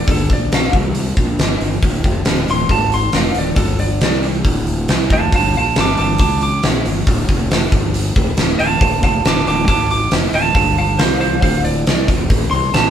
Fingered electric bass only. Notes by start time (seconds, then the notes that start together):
0.08 G1
0.30 A#1
0.74 C2
1.17 A#1
1.39 G1
1.60 G1
1.82 D1
2.04 F1
2.26 D1
2.48 D1
2.70 G#1
3.13 F1
3.35 D1
3.57 G1
4.01 C2
4.45 D1
4.89 C2
5.10 F1
5.33 G1
5.55 A#1
5.77 G1
5.99 G1
6.19 C#2
6.65 A#1
6.87 G1
7.07 D1
7.29 F1
7.72 G1
8.16 F1
8.37 D1
8.59 D1
8.81 D1
9.03 F1
9.25 D1
9.46 D1
9.68 G#1
10.12 F1
10.32 D1
10.55 G1
10.99 C2
11.42 D1
11.88 C2
12.08 F1
12.30 A1
12.52 C2
12.74 A1